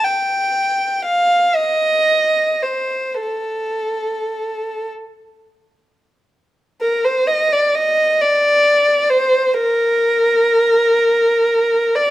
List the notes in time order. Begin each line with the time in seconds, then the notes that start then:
0.05 G5
1.05 F5
1.56 D#5
2.63 C5
3.21 A4
6.81 A#4
7.05 C5
7.28 D#5
7.53 D5
7.75 D#5
8.21 D5
9.10 C5
9.54 A#4
11.96 D5